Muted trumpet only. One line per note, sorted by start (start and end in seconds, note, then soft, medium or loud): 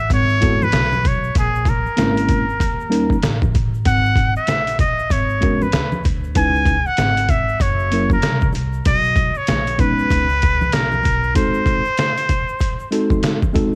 0.00 0.12 E5 loud
0.14 0.65 C#5 loud
0.64 1.09 B4 loud
1.08 1.37 C#5 medium
1.39 1.71 G#4 medium
1.69 3.55 A#4 medium
3.87 4.33 F#5 loud
4.37 4.77 E5 loud
4.80 5.13 D#5 medium
5.12 5.64 C#5 medium
5.62 6.05 B4 medium
6.37 6.88 G#5 loud
6.87 7.31 F#5 loud
7.30 7.63 E5 loud
7.62 8.11 C#5 medium
8.13 8.52 A#4 medium
8.87 9.39 D#5 loud
9.37 9.82 C#5 loud
9.80 10.75 B4 loud
10.73 11.36 A#4 loud
11.36 13.19 C5 loud